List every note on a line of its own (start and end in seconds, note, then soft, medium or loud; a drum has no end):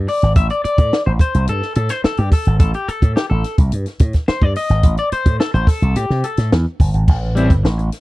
0.08 0.36 D5 medium
0.08 open hi-hat medium
0.22 0.35 G#1 medium
0.22 snare soft
0.22 closed hi-hat soft
0.36 0.48 A1 loud
0.36 0.50 E5 loud
0.36 kick loud
0.36 closed hi-hat medium
0.50 0.63 D5 loud
0.50 closed hi-hat soft
0.64 1.06 D5 loud
0.64 muted slap bass stroke medium
0.64 closed hi-hat medium
0.78 0.91 A2 loud
0.78 kick loud
0.78 closed hi-hat soft
0.93 snare loud
1.06 1.19 A1 medium
1.06 1.11 C5 medium
1.19 1.49 C5 medium
1.19 kick loud
1.19 closed hi-hat medium
1.34 1.47 C2 loud
1.34 closed hi-hat medium
1.47 1.61 G2 loud
1.47 1.75 A4 loud
1.47 closed hi-hat medium
1.62 snare soft
1.75 1.89 A2 loud
1.75 1.90 A4 medium
1.75 closed hi-hat medium
1.89 2.04 C5 loud
1.89 snare soft
1.89 closed hi-hat medium
2.04 2.18 A4 loud
2.04 muted slap bass stroke medium
2.04 snare loud
2.17 2.31 G2 loud
2.17 2.32 G4 medium
2.17 closed hi-hat soft
2.32 2.59 A4 medium
2.32 kick loud
2.32 open hi-hat medium
2.45 2.59 G#1 medium
2.45 closed hi-hat medium
2.60 2.72 A1 loud
2.60 2.74 A4 medium
2.60 kick loud
2.60 closed hi-hat medium
2.74 2.88 G4 medium
2.74 closed hi-hat soft
2.88 3.16 A4 medium
2.88 muted slap bass stroke soft
2.88 closed hi-hat medium
3.02 3.14 A2 loud
3.02 kick medium
3.02 closed hi-hat soft
3.16 3.29 G4 medium
3.16 snare loud
3.30 3.43 A1 medium
3.30 3.56 A4 medium
3.44 snare soft
3.44 closed hi-hat medium
3.58 3.71 C2 medium
3.58 kick medium
3.58 closed hi-hat medium
3.72 3.85 G2 medium
3.72 closed hi-hat medium
3.86 snare soft
3.86 closed hi-hat soft
3.99 4.13 A2 loud
3.99 kick loud
3.99 closed hi-hat medium
4.13 kick medium
4.13 snare soft
4.13 closed hi-hat soft
4.28 4.43 C5 loud
4.28 muted slap bass stroke medium
4.28 snare loud
4.42 4.54 G2 loud
4.42 4.56 D5 medium
4.42 kick loud
4.56 4.98 D#5 loud
4.56 open hi-hat medium
4.69 4.82 G#1 medium
4.69 snare soft
4.69 closed hi-hat medium
4.83 4.96 A1 loud
4.83 kick loud
4.83 closed hi-hat medium
4.97 5.12 D5 loud
4.97 closed hi-hat soft
5.12 5.40 C5 loud
5.12 muted slap bass stroke soft
5.12 closed hi-hat medium
5.26 5.38 A2 loud
5.26 kick loud
5.26 closed hi-hat soft
5.40 5.54 A4 loud
5.40 snare loud
5.54 5.66 A1 medium
5.54 5.68 C5 medium
5.54 closed hi-hat soft
5.67 5.96 A4 loud
5.67 kick loud
5.67 open hi-hat medium
5.82 5.94 C2 loud
5.82 closed hi-hat medium
5.96 6.08 A2 loud
5.96 6.25 G4 medium
5.96 closed hi-hat medium
6.10 6.22 C3 loud
6.10 snare soft
6.24 6.50 A4 medium
6.24 closed hi-hat medium
6.37 6.50 A2 loud
6.37 snare soft
6.37 closed hi-hat soft
6.52 6.65 E2 medium
6.52 snare loud
6.80 6.92 G1 loud
6.80 kick loud
6.80 open hi-hat medium
6.94 7.06 G#1 loud
6.94 closed hi-hat soft
7.08 7.50 A1 medium
7.08 kick loud
7.08 crash loud
7.35 7.50 G3 medium
7.35 7.50 C4 loud
7.35 7.51 E4 loud
7.35 closed hi-hat medium
7.50 7.62 G1 medium
7.50 kick medium
7.50 closed hi-hat soft
7.63 7.89 A1 medium
7.63 muted clean electric guitar stroke soft
7.63 snare loud
7.78 muted clean electric guitar stroke soft
7.78 closed hi-hat soft
7.92 snare soft
7.92 closed hi-hat medium